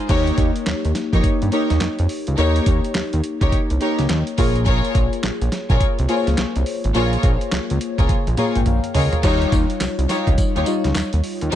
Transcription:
Already playing: fm electric piano G#3 D#4 F4 C5
0.09 analog synth bass D#2, fm electric piano A#3 D#4 G4 C#5, string section D#4 G4 A#4 C#5, kick, closed hi-hat, crash
0.27 closed hi-hat
0.38 analog synth bass D#2, kick, closed hi-hat
0.56 closed hi-hat
0.66 analog synth bass D#2, snare, clap, closed hi-hat
0.85 analog synth bass D#2, closed hi-hat
0.95 snare, closed hi-hat
1.13 analog synth bass F2, string section D#4 G4 A#4 C#5, kick, closed hi-hat
1.24 analog synth bass G2, kick, closed hi-hat
1.42 analog synth bass G2, closed hi-hat
1.52 fm electric piano A#3 D#4 G4 C#5, string section D#4 G4 A#4 C#5, closed hi-hat
1.70 analog synth bass D#2, snare, closed hi-hat
1.81 analog synth bass F2, snare, clap, closed hi-hat
1.99 analog synth bass F2, closed hi-hat
2.09 open hi-hat
2.27 analog synth bass C#2, closed hi-hat
2.37 analog synth bass D#2, fm electric piano A#3 D#4 G4 C#5, string section D#4 G4 A#4 C#5, closed hi-hat
2.56 closed hi-hat
2.66 analog synth bass D#2, kick, closed hi-hat
2.84 closed hi-hat
2.95 analog synth bass D#2, snare, clap, closed hi-hat
3.13 analog synth bass D#2, closed hi-hat
3.24 closed hi-hat
3.41 analog synth bass C#2, string section D#4 G4 A#4 C#5, kick, closed hi-hat
3.52 analog synth bass C2, kick, closed hi-hat
3.70 analog synth bass C2, closed hi-hat
3.80 fm electric piano A#3 D#4 G4 C#5, string section D#4 G4 A#4 C#5, closed hi-hat
3.99 analog synth bass C#2, snare, closed hi-hat
4.09 analog synth bass D#2, snare, clap, closed hi-hat
4.27 closed hi-hat
4.37 analog synth bass A#1, fm electric piano A#3 F4 G#4 C#5, string section F4 G#4 A#4 C#5, kick, open hi-hat
4.56 closed hi-hat
4.66 string section F4 G#4 A#4 C#5, kick, closed hi-hat
4.85 closed hi-hat
4.95 analog synth bass A#1, kick, closed hi-hat
5.13 closed hi-hat
5.23 analog synth bass A#1, snare, clap, closed hi-hat
5.41 analog synth bass A#1, closed hi-hat
5.52 snare, closed hi-hat
5.69 analog synth bass A#1, string section F4 G#4 A#4 C#5, kick, closed hi-hat
5.80 kick, closed hi-hat
5.99 analog synth bass C2, closed hi-hat
6.08 fm electric piano A#3 F4 G#4 C5, string section F4 G#4 A#4 C#5, closed hi-hat
6.17 fm electric piano C#5
6.27 analog synth bass C#2, snare, closed hi-hat
6.38 snare, clap, closed hi-hat
6.56 analog synth bass C2, closed hi-hat
6.66 open hi-hat
6.84 analog synth bass G#1, closed hi-hat
6.95 analog synth bass A#1, fm electric piano A#3 F4 G#4 C#5, string section F4 G#4 A#4 C#5, closed hi-hat
7.13 closed hi-hat
7.23 analog synth bass A#1, kick, closed hi-hat
7.41 closed hi-hat
7.52 analog synth bass C#2, snare, clap, closed hi-hat
7.70 analog synth bass C#2, closed hi-hat
7.81 closed hi-hat
7.98 analog synth bass C#2, string section F4 G#4 A#4 C#5, kick, closed hi-hat
8.09 analog synth bass A#1, kick, closed hi-hat, high tom
8.27 analog synth bass A#1, closed hi-hat
8.37 fm electric piano A#3 F4 G#4 C#5 A#5, string section F4 G#4 A#4 C#5, closed hi-hat, mid tom
8.55 analog synth bass G#1, fm electric piano G5, closed hi-hat, mid tom
8.66 analog synth bass A#1, fm electric piano F5, closed hi-hat, mid tom
8.84 closed hi-hat
8.94 analog synth bass C#2, string section F4 G#4 A#4 C#5, fm electric piano D#5, floor tom, open hi-hat
9.13 closed hi-hat, floor tom
9.23 analog synth bass D#2, fm electric piano G3 D#4 F4 C#5, string section D#4 F4 G4 C#5, kick, closed hi-hat, crash, tambourine
9.42 closed hi-hat
9.52 analog synth bass D#2, kick, closed hi-hat, tambourine
9.70 closed hi-hat
9.80 analog synth bass C2, snare, clap, closed hi-hat, tambourine
9.98 analog synth bass C2, closed hi-hat
10.09 string section D#4 F4 G4 C#5, snare, closed hi-hat, tambourine
10.27 analog synth bass C#2, kick, closed hi-hat
10.38 analog synth bass D#2, kick, closed hi-hat, tambourine
10.56 analog synth bass D#2, string section D#4 F4 G4 C#5, closed hi-hat
10.66 fm electric piano G3 D#4 F4 C#5, closed hi-hat, tambourine
10.84 analog synth bass C#2, snare, closed hi-hat
10.95 snare, clap, closed hi-hat, tambourine
11.13 analog synth bass D#2, closed hi-hat
11.24 open hi-hat
11.41 analog synth bass D#2, closed hi-hat
11.52 string section D#4 F4, closed hi-hat, tambourine

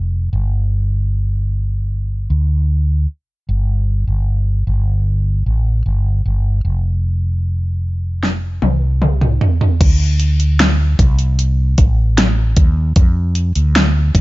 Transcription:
Already playing: fretless electric bass F1
0.33 fretless electric bass G1
2.30 fretless electric bass D2
3.49 fretless electric bass G1
4.07 fretless electric bass G1
4.67 fretless electric bass G1
5.46 fretless electric bass A1
5.86 fretless electric bass G1
6.26 fretless electric bass G1
6.65 fretless electric bass F1
8.23 snare
8.62 fretless electric bass C2, high tom
9.02 mid tom
9.21 mid tom
9.41 floor tom
9.61 floor tom
9.81 fretless electric bass D2, kick, closed hi-hat, crash
10.20 closed hi-hat
10.40 closed hi-hat
10.59 snare, closed hi-hat
10.99 fretless electric bass C2, kick, closed hi-hat
11.19 closed hi-hat
11.39 closed hi-hat
11.78 fretless electric bass A1, kick, closed hi-hat
12.18 snare, closed hi-hat
12.56 fretless electric bass D#2, kick, closed hi-hat
12.96 fretless electric bass F2, kick, closed hi-hat
13.35 closed hi-hat
13.55 fretless electric bass D2, closed hi-hat
13.75 snare, closed hi-hat
14.15 fretless electric bass D#2, kick, closed hi-hat

